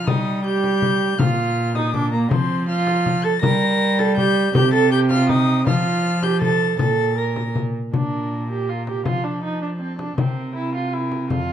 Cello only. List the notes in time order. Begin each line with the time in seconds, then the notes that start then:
0.07 G3
1.19 A#2
2.31 F3
3.43 G3
4.55 C3
5.67 F3
6.79 A#2
7.94 A#2
9.06 F3
10.18 C3
11.30 F2